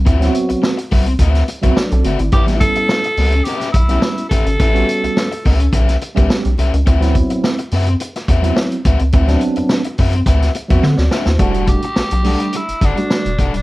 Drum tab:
HH |xxxx-xoxxxxx-xxx|xxxx-xoxxxxx-xxx|xxxx-xoxxxxx-xxx|xxxx-xoxxxxx-xxx|
SD |-o--o----o--o---|-o--o----o--o---|----o----o--o---|-o--o----o--o---|
BD |o-----o-o--o----|o-o-------o---o-|o-----o-o--o----|o-o-------o---o-|

HH |xxxx-xoxxxxx----|xxxx-xoxxxxx-xxx|
SD |-o--o----o--oooo|----o-------o---|
BD |o-----o-o--o----|o-o-------o---o-|